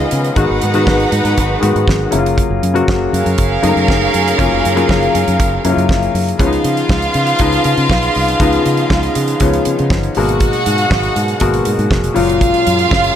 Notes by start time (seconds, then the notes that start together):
Already playing: C#3 D#3 F3 G#3 B3 C#4 D#4 F4 G#4 D#5
0.11 C#3, closed hi-hat
0.24 closed hi-hat
0.35 G#1 D#3 F#3 G#3 B3 D#4 F#4 G#4 B4 F#5, kick, closed hi-hat
0.50 G#1
0.62 G#2, closed hi-hat
0.74 D#3 G#3 B3 F#4, closed hi-hat
0.87 G#1, kick, snare
1.00 closed hi-hat
1.12 G#2, closed hi-hat
1.25 G#2, closed hi-hat
1.38 G#1, kick, closed hi-hat
1.61 G#2 D#3 G#3 B3 F#4, closed hi-hat
1.76 G#2, closed hi-hat
1.88 G#1, kick, snare
2.11 F#1 C#3 F#3 A#3 E4 F5, closed hi-hat
2.18 F4
2.26 closed hi-hat
2.38 kick, closed hi-hat
2.50 F#1
2.63 F#2, closed hi-hat
2.74 C#3 F#3 A#3 F#4, closed hi-hat
2.88 F#1, kick, snare
3.13 F#2 C#4 A#4 F5, closed hi-hat
3.26 F#2, closed hi-hat
3.38 F#1, kick, closed hi-hat
3.62 F#2 C#3 F#3 A3 D#4, closed hi-hat
3.69 A#3
3.76 F#2, closed hi-hat
3.88 F#1, kick, snare
4.14 F#2, closed hi-hat
4.28 closed hi-hat
4.38 F#1 C#3 F#3 A#3 F4, kick, closed hi-hat
4.52 F#1
4.65 F#2, closed hi-hat
4.76 C#3 F#3 A#3 F4, closed hi-hat
4.89 F#1, kick, snare
5.03 closed hi-hat
5.15 F#2, closed hi-hat
5.28 F#2, closed hi-hat
5.40 F#1, kick, closed hi-hat
5.64 F#2 C#3 F#3 A#3 E4, closed hi-hat
5.71 F4
5.77 F#2, closed hi-hat
5.89 F#1, kick, snare
6.03 closed hi-hat
6.14 F#2, open hi-hat
6.28 closed hi-hat
6.38 C#2 C#3 F3 B3 C#4 F4 G#4 F5, kick, closed hi-hat
6.46 D#4
6.53 closed hi-hat
6.64 C#3, closed hi-hat
6.77 closed hi-hat
6.89 C#2, kick, snare
7.02 closed hi-hat
7.14 C#3, closed hi-hat
7.27 closed hi-hat
7.39 C#2 C#3 F3 B3 D#4, kick, closed hi-hat
7.53 closed hi-hat
7.64 C#3, closed hi-hat
7.78 C#3, closed hi-hat
7.90 B1, kick, snare
8.03 closed hi-hat
8.15 C2, open hi-hat
8.28 closed hi-hat
8.40 C#2 C#3 F3 B3 D#4, kick, closed hi-hat
8.53 closed hi-hat
8.66 C#3, closed hi-hat
8.77 closed hi-hat
8.90 C#2, kick, snare
9.03 closed hi-hat
9.15 C#3, closed hi-hat
9.28 closed hi-hat
9.40 C#2 C#3 F3 B3 C#4, kick, closed hi-hat
9.53 closed hi-hat
9.65 C#3, closed hi-hat
9.79 C#3, closed hi-hat
9.90 G1, kick, snare
10.03 closed hi-hat
10.15 G#1 B2 F#3 G#3 A#3 F#4 G#4 F#5, open hi-hat
10.29 closed hi-hat
10.40 kick, closed hi-hat
10.53 closed hi-hat
10.66 G#2, closed hi-hat
10.78 closed hi-hat
10.91 G#1, kick, snare
11.03 closed hi-hat
11.16 G#2, closed hi-hat
11.28 closed hi-hat
11.40 G#1 B2 G#3 A#3 F#4, kick, closed hi-hat
11.54 closed hi-hat
11.65 G#2, closed hi-hat
11.79 G#2, closed hi-hat
11.91 F1, kick, snare
12.04 closed hi-hat
12.14 F#1 A#2 F#3 G#3 A#3 C#4 F4 F5, open hi-hat
12.29 closed hi-hat
12.41 kick, closed hi-hat
12.54 closed hi-hat
12.67 F#2, closed hi-hat
12.79 closed hi-hat
12.91 F#1, kick, snare
13.04 closed hi-hat